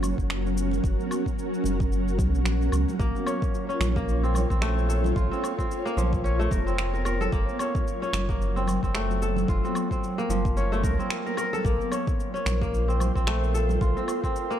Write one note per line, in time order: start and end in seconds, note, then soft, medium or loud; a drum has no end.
0.00 0.13 F#1 medium
0.00 3.00 F#3 medium
0.00 4.60 C#4 medium
0.00 3.00 F#4 medium
0.00 4.75 A#4 medium
0.00 0.42 C#5 medium
0.00 11.66 C#5 medium
0.00 low conga medium
0.00 low woodblock medium
0.00 shaker medium
0.18 0.80 F#1 medium
0.18 kick medium
0.18 shaker soft
0.30 finger snap medium
0.30 shaker soft
0.46 high conga soft
0.46 shaker soft
0.58 shaker medium
0.71 low conga medium
0.71 shaker soft
0.84 0.96 F#1 medium
0.84 kick loud
0.84 shaker soft
1.00 high conga medium
1.00 shaker soft
1.11 low woodblock medium
1.11 shaker medium
1.26 kick medium
1.26 shaker soft
1.39 shaker soft
1.54 shaker soft
1.64 2.20 F#1 medium
1.64 muted conga soft
1.64 low conga medium
1.64 shaker medium
1.80 kick loud
1.80 high conga soft
1.80 shaker soft
1.92 shaker soft
2.08 muted conga soft
2.08 shaker soft
2.18 2.35 C#2 medium
2.18 kick loud
2.18 muted conga soft
2.18 high conga medium
2.18 low conga medium
2.18 shaker medium
2.34 2.69 A#1 medium
2.34 shaker soft
2.45 finger snap medium
2.45 shaker soft
2.61 muted conga soft
2.61 high conga soft
2.61 shaker soft
2.72 2.85 C#2 medium
2.72 low woodblock medium
2.72 shaker medium
2.88 muted conga soft
2.88 low conga medium
2.88 shaker soft
2.99 3.12 A#1 loud
2.99 3.96 A#3 medium
2.99 kick loud
2.99 shaker soft
3.06 7.32 F4 medium
3.06 9.06 C#5 medium
3.15 high conga medium
3.15 shaker soft
3.27 3.69 C#4 medium
3.27 low woodblock medium
3.27 shaker medium
3.42 kick medium
3.42 shaker soft
3.54 shaker soft
3.69 4.29 C#4 medium
3.69 shaker soft
3.80 4.46 A#1 medium
3.80 finger snap medium
3.80 low conga medium
3.80 shaker medium
3.96 4.68 A#3 medium
3.96 kick loud
3.96 shaker soft
4.09 shaker soft
4.23 4.50 C4 medium
4.23 shaker soft
4.34 low conga medium
4.34 low woodblock medium
4.34 shaker medium
4.50 5.13 A#1 medium
4.50 5.31 C4 medium
4.50 kick medium
4.50 shaker soft
4.62 5.92 A3 loud
4.62 finger snap medium
4.62 shaker soft
4.78 high conga soft
4.78 shaker soft
4.89 5.92 A4 medium
4.89 shaker medium
5.04 low conga medium
5.04 shaker soft
5.16 5.29 A#1 medium
5.16 6.67 F4 medium
5.16 kick loud
5.16 shaker soft
5.31 5.58 C4 medium
5.31 high conga medium
5.31 shaker soft
5.44 low woodblock medium
5.44 shaker medium
5.58 6.30 C4 medium
5.58 kick medium
5.58 shaker soft
5.71 shaker soft
5.86 6.46 A#3 loud
5.86 shaker soft
5.97 6.48 A#1 medium
5.97 7.37 F3 medium
5.97 muted conga soft
5.97 low conga medium
5.97 shaker medium
6.13 kick medium
6.13 high conga soft
6.13 shaker soft
6.24 6.73 C#4 medium
6.24 shaker soft
6.40 6.57 A3 medium
6.40 muted conga soft
6.40 shaker soft
6.51 7.29 F1 loud
6.51 6.93 A#4 medium
6.51 kick medium
6.51 muted conga soft
6.51 high conga medium
6.51 low conga medium
6.51 shaker medium
6.67 7.66 C4 medium
6.67 shaker soft
6.78 finger snap medium
6.78 shaker soft
6.93 7.05 A#4 medium
6.93 muted conga medium
6.93 high conga soft
6.93 shaker soft
7.05 7.27 A#4 medium
7.05 low woodblock medium
7.05 shaker medium
7.21 7.38 A4 loud
7.21 muted conga soft
7.21 low conga medium
7.21 shaker soft
7.32 7.45 F#1 medium
7.32 11.65 F#3 loud
7.32 8.29 A#3 loud
7.32 kick loud
7.32 shaker soft
7.49 high conga medium
7.49 shaker soft
7.59 8.02 C#4 medium
7.59 low woodblock medium
7.59 shaker medium
7.75 kick medium
7.75 shaker soft
7.88 shaker soft
8.02 8.62 C#4 medium
8.02 shaker soft
8.13 8.78 F#1 medium
8.13 finger snap medium
8.13 low conga medium
8.13 shaker medium
8.29 9.01 A#3 medium
8.29 kick loud
8.29 shaker soft
8.42 shaker soft
8.56 8.83 C4 medium
8.56 shaker soft
8.67 low conga medium
8.67 low woodblock medium
8.67 shaker medium
8.83 9.45 F#1 medium
8.83 9.64 C4 medium
8.83 kick medium
8.83 shaker soft
8.95 10.24 A3 loud
8.95 finger snap medium
8.95 shaker soft
9.10 high conga soft
9.10 shaker soft
9.22 10.24 A4 medium
9.22 shaker medium
9.37 low conga medium
9.37 shaker soft
9.48 9.61 F#1 medium
9.48 11.00 F4 medium
9.48 kick loud
9.48 shaker soft
9.64 9.91 C4 medium
9.64 high conga medium
9.64 shaker soft
9.75 low woodblock medium
9.75 shaker medium
9.91 10.63 C4 medium
9.91 kick medium
9.91 shaker soft
10.04 shaker soft
10.18 10.78 A#3 medium
10.18 high conga soft
10.18 shaker soft
10.29 10.85 F#1 medium
10.29 11.70 F3 medium
10.29 muted conga soft
10.29 low conga medium
10.29 shaker medium
10.45 kick loud
10.45 high conga soft
10.45 shaker soft
10.57 11.05 C#4 medium
10.57 swell medium
10.57 shaker soft
10.72 10.90 A3 medium
10.72 muted conga soft
10.72 shaker soft
10.83 10.96 C#2 medium
10.83 11.26 A#4 medium
10.83 kick medium
10.83 muted conga soft
10.83 high conga medium
10.83 low conga medium
10.83 shaker medium
10.99 11.98 C4 medium
10.99 shaker soft
11.10 finger snap medium
11.10 shaker soft
11.26 11.37 A#4 medium
11.26 muted conga medium
11.26 high conga soft
11.26 shaker soft
11.37 11.59 A#4 medium
11.37 low woodblock medium
11.37 shaker medium
11.53 11.71 A4 medium
11.53 muted conga soft
11.53 low conga medium
11.53 shaker soft
11.65 11.77 A#1 medium
11.65 12.61 A#3 medium
11.65 14.60 A#4 medium
11.65 kick loud
11.65 shaker soft
11.78 14.60 F4 medium
11.78 high conga medium
11.78 shaker soft
11.92 12.33 C#4 medium
11.92 14.60 C5 medium
11.92 low woodblock medium
11.92 shaker medium
12.07 kick loud
12.07 shaker soft
12.20 shaker soft
12.34 12.94 C#4 medium
12.34 shaker soft
12.46 13.11 A#1 medium
12.46 finger snap medium
12.46 low conga medium
12.46 shaker medium
12.61 13.33 A#3 medium
12.61 kick medium
12.61 shaker soft
12.74 shaker soft
12.88 13.15 C4 medium
12.88 shaker soft
13.00 low conga medium
13.00 low woodblock medium
13.00 shaker medium
13.15 13.78 A#1 medium
13.15 13.96 C4 medium
13.15 kick medium
13.15 shaker soft
13.27 14.57 A3 medium
13.27 finger snap medium
13.27 shaker soft
13.43 high conga soft
13.43 shaker soft
13.54 14.57 A4 medium
13.54 shaker medium
13.69 low conga medium
13.69 shaker soft
13.81 13.94 A#1 loud
13.81 14.60 F4 medium
13.81 kick loud
13.81 shaker soft
13.97 14.23 C4 medium
13.97 high conga medium
13.97 shaker soft
14.08 low woodblock medium
14.08 shaker medium
14.24 14.60 C4 medium
14.24 kick medium
14.24 shaker soft
14.36 shaker soft
14.51 14.60 A#3 medium
14.51 shaker soft